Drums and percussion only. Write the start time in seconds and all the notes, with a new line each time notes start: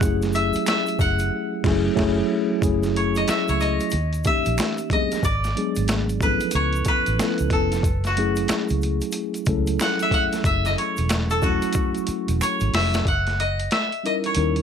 0.01 kick, closed hi-hat, shaker
0.22 snare, closed hi-hat, shaker
0.33 closed hi-hat, shaker
0.53 closed hi-hat, shaker
0.66 finger snap, snare, closed hi-hat, shaker
0.86 closed hi-hat, shaker
0.99 kick, closed hi-hat, shaker
1.19 closed hi-hat, shaker
1.64 kick, snare, crash
1.97 kick, snare, crash
2.62 kick, closed hi-hat, shaker
2.83 snare, closed hi-hat, shaker
2.96 closed hi-hat
3.15 closed hi-hat, shaker
3.28 finger snap, snare, closed hi-hat, shaker
3.48 closed hi-hat, shaker
3.60 closed hi-hat, shaker
3.80 closed hi-hat, shaker
3.90 closed hi-hat, shaker
4.13 closed hi-hat, shaker
4.24 kick, closed hi-hat, shaker
4.45 closed hi-hat, shaker
4.58 finger snap, snare, closed hi-hat, shaker
4.78 closed hi-hat, shaker
4.90 kick, closed hi-hat
5.11 snare, closed hi-hat, shaker
5.23 kick, closed hi-hat, shaker
5.44 snare, closed hi-hat, shaker
5.57 closed hi-hat
5.75 closed hi-hat, shaker
5.88 finger snap, snare, closed hi-hat, shaker
6.09 closed hi-hat, shaker
6.21 kick, closed hi-hat, shaker
6.40 closed hi-hat, shaker
6.51 closed hi-hat, shaker
6.73 closed hi-hat, shaker
6.85 kick, closed hi-hat, shaker
7.06 closed hi-hat, shaker
7.19 finger snap, snare, closed hi-hat, shaker
7.38 closed hi-hat, shaker
7.50 kick, closed hi-hat
7.72 snare, closed hi-hat, shaker
7.83 kick, closed hi-hat, shaker
8.04 snare, closed hi-hat, shaker
8.17 closed hi-hat
8.36 closed hi-hat, shaker
8.48 finger snap, snare, closed hi-hat, shaker
8.68 closed hi-hat, shaker
8.81 closed hi-hat, shaker
9.01 closed hi-hat, shaker
9.11 closed hi-hat, shaker
9.34 closed hi-hat, shaker
9.45 kick, closed hi-hat, shaker
9.67 closed hi-hat, shaker
9.79 finger snap, snare, closed hi-hat, shaker
9.99 closed hi-hat, shaker
10.11 kick, closed hi-hat
10.33 snare, closed hi-hat, shaker
10.44 kick, closed hi-hat, shaker
10.65 snare, closed hi-hat, shaker
10.78 closed hi-hat
10.97 closed hi-hat, shaker
11.09 finger snap, snare, closed hi-hat, shaker
11.30 closed hi-hat, shaker
11.42 kick, closed hi-hat, shaker
11.62 closed hi-hat, shaker
11.73 kick, closed hi-hat, shaker
11.95 closed hi-hat, shaker
12.07 closed hi-hat, shaker
12.28 closed hi-hat, shaker
12.41 finger snap, closed hi-hat, shaker
12.60 closed hi-hat, shaker
12.74 snare, open hi-hat
12.94 snare, closed hi-hat, shaker
13.05 kick, closed hi-hat
13.27 snare, closed hi-hat
13.40 closed hi-hat
13.60 closed hi-hat
13.71 snare, closed hi-hat
13.92 closed hi-hat
14.06 closed hi-hat
14.24 closed hi-hat
14.35 closed hi-hat
14.56 closed hi-hat